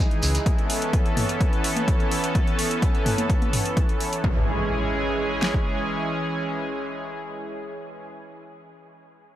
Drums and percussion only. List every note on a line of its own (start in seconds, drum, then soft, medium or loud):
0.11 closed hi-hat soft
0.23 open hi-hat medium
0.23 shekere loud
0.35 closed hi-hat medium
0.35 shekere soft
0.46 kick loud
0.46 closed hi-hat soft
0.58 closed hi-hat soft
0.70 open hi-hat loud
0.82 closed hi-hat medium
0.93 kick loud
0.93 closed hi-hat medium
1.06 closed hi-hat soft
1.17 mid tom medium
1.17 open hi-hat medium
1.17 high conga medium
1.29 closed hi-hat soft
1.41 kick loud
1.41 closed hi-hat soft
1.53 closed hi-hat soft
1.64 open hi-hat loud
1.76 closed hi-hat soft
1.76 high conga medium
1.88 kick loud
1.88 closed hi-hat soft
2.00 closed hi-hat soft
2.11 open hi-hat medium
2.24 closed hi-hat soft
2.35 kick loud
2.35 closed hi-hat soft
2.47 closed hi-hat soft
2.59 open hi-hat loud
2.71 closed hi-hat soft
2.82 kick loud
2.82 closed hi-hat soft
2.95 closed hi-hat soft
3.06 mid tom medium
3.06 open hi-hat medium
3.06 high conga medium
3.18 closed hi-hat soft
3.18 high conga medium
3.30 kick loud
3.30 closed hi-hat soft
3.42 closed hi-hat soft
3.42 high conga medium
3.53 mid tom medium
3.53 open hi-hat loud
3.66 closed hi-hat soft
3.77 kick loud
3.77 closed hi-hat soft
3.89 closed hi-hat soft
4.00 open hi-hat medium
4.13 closed hi-hat soft
4.24 kick loud
5.42 snare medium
5.54 kick medium